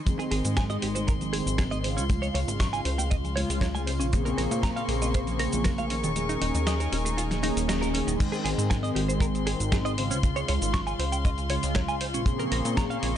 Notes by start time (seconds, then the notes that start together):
0.05 D#3 G#3 C4 C6, kick, closed hi-hat, tambourine, high conga, low conga, shaker
0.19 G#4, closed hi-hat, tambourine, shaker
0.31 G#1 G#4, open hi-hat, tambourine, high bongo
0.45 G#2, closed hi-hat, tambourine, high conga, shaker
0.57 G#5, kick, snare, closed hi-hat, tambourine, shaker
0.70 D#5, closed hi-hat, tambourine, high bongo, shaker
0.82 G#1 G4, open hi-hat, tambourine
0.95 C5, closed hi-hat, tambourine, high conga, shaker
1.07 A#4, kick, closed hi-hat, tambourine, shaker
1.21 closed hi-hat, tambourine, high bongo, low conga, shaker
1.33 G#4, open hi-hat, tambourine, high conga
1.46 G#1, closed hi-hat, tambourine, low conga, shaker
1.58 G#4, kick, snare, closed hi-hat, tambourine, high bongo, shaker
1.71 D#5, closed hi-hat, tambourine, high conga, shaker
1.84 C#3 G#3 C4 F4 C5 F5, open hi-hat, tambourine
1.97 C#2 C#4, closed hi-hat, tambourine, shaker
2.09 C#3 G#3 F4, kick, closed hi-hat, tambourine, high bongo, high conga, low conga, shaker
2.22 C#5, closed hi-hat, tambourine, shaker
2.34 C#2 C#5, open hi-hat, tambourine
2.48 G#1, closed hi-hat, tambourine, high bongo, high conga, shaker
2.60 C#6, kick, snare, closed hi-hat, tambourine, shaker
2.73 G#5, closed hi-hat, tambourine, shaker
2.85 C#2 C5, open hi-hat, tambourine
2.98 G5, closed hi-hat, tambourine, high bongo, high conga, shaker
3.11 D#5, kick, closed hi-hat, tambourine, shaker
3.24 closed hi-hat, tambourine, low conga, shaker
3.35 C#3 G#3 F4 C#5, open hi-hat, tambourine, high bongo, high conga
3.50 C#2, open hi-hat, tambourine, shaker
3.61 C#5, kick, snare, closed hi-hat, tambourine, shaker
3.75 G#5, closed hi-hat, tambourine, high conga, shaker
3.87 C5, open hi-hat, tambourine, high bongo
4.00 A#1 C#4, closed hi-hat, tambourine, shaker
4.12 C#3 A#3 C4 G#4 C6 C#6, kick, closed hi-hat, tambourine, high conga, low conga, shaker
4.25 A#4, closed hi-hat, tambourine, high bongo, shaker
4.38 A#1 A#4, open hi-hat, tambourine
4.51 A#2, closed hi-hat, tambourine, high conga, shaker
4.63 A#5, kick, snare, closed hi-hat, tambourine, shaker
4.76 F5, closed hi-hat, tambourine, high bongo, shaker
4.88 A#1 G#4, open hi-hat, tambourine
5.02 D#5, closed hi-hat, tambourine, high conga, shaker
5.14 C5, kick, closed hi-hat, tambourine, high bongo, shaker
5.27 closed hi-hat, tambourine, low conga, shaker
5.39 A#4, open hi-hat, tambourine, high conga
5.52 A#1, closed hi-hat, tambourine, low conga, shaker
5.64 A#4, kick, snare, closed hi-hat, tambourine, high bongo, shaker
5.78 F5, closed hi-hat, tambourine, high conga, shaker
5.90 D#3 A#3 C#4 D#4 G#4 A#4 G#5, open hi-hat, tambourine
6.04 D#1 D#3, closed hi-hat, tambourine, high bongo, shaker
6.15 D#3 A#3 C#4 G#4, closed hi-hat, tambourine, high conga, low conga, shaker
6.29 D#4, closed hi-hat, tambourine, shaker
6.42 D#1 D#4, open hi-hat, tambourine
6.55 D#2, closed hi-hat, tambourine, high bongo, high conga, shaker
6.67 D#5, snare, closed hi-hat, tambourine, shaker
6.80 A#4, closed hi-hat, tambourine, shaker
6.92 D#1 C#4, open hi-hat, tambourine, high bongo
7.05 G#4, closed hi-hat, tambourine, high conga, shaker
7.17 F4, closed hi-hat, tambourine, shaker
7.31 snare, closed hi-hat, tambourine, low conga, shaker
7.42 D#3 A#3 C#4 D#4 G#4, open hi-hat, tambourine, high bongo, high conga
7.55 D#1, open hi-hat, tambourine, shaker
7.68 D#4, snare, closed hi-hat, tambourine, shaker
7.81 A#4, closed hi-hat, tambourine, high bongo, high conga, shaker
7.94 C#4, open hi-hat, tambourine
8.07 D#1 D#3, closed hi-hat, tambourine, shaker
8.18 D#3 G#3 C4 C6, kick, closed hi-hat, crash, shaker
8.32 G#4, closed hi-hat, shaker
8.44 G#1 G#4, open hi-hat
8.58 G#2, closed hi-hat, shaker
8.70 G#5, kick, snare, closed hi-hat, shaker
8.83 D#5, closed hi-hat, shaker
8.95 G#1 G4, open hi-hat
9.08 C5, closed hi-hat, shaker
9.20 A#4, kick, closed hi-hat, shaker
9.35 closed hi-hat, shaker
9.47 G#4, open hi-hat
9.60 G#1, closed hi-hat, shaker
9.72 G#4, kick, snare, closed hi-hat, shaker
9.85 D#5, closed hi-hat, shaker
9.97 C#3 G#3 C4 F4 C5 F5, open hi-hat
10.11 C#2 C#4, closed hi-hat, shaker
10.22 C#3 G#3 F4, kick, closed hi-hat, shaker
10.36 C#5, closed hi-hat, shaker
10.48 C#2 C#5, open hi-hat
10.62 G#1, closed hi-hat, shaker
10.74 C#6, kick, snare, closed hi-hat, shaker
10.87 G#5, closed hi-hat, shaker
10.99 C#2 C5, open hi-hat
11.12 G5, closed hi-hat, shaker
11.25 D#5, kick, closed hi-hat, shaker
11.38 closed hi-hat, shaker
11.49 C#3 G#3 F4 C#5, open hi-hat
11.63 C#2, open hi-hat, shaker
11.75 C#5, kick, snare, closed hi-hat, shaker
11.88 G#5, closed hi-hat, shaker
12.01 C5, open hi-hat
12.14 A#1 C#4, closed hi-hat, shaker
12.25 C#3 A#3 C4 G#4 C#6, kick, closed hi-hat, shaker
12.39 A#4, closed hi-hat, shaker
12.52 A#1 A#4, open hi-hat
12.65 A#2, closed hi-hat, shaker
12.77 A#5, kick, snare, closed hi-hat, shaker
12.90 F5, closed hi-hat, shaker
13.03 A#1 G#4, open hi-hat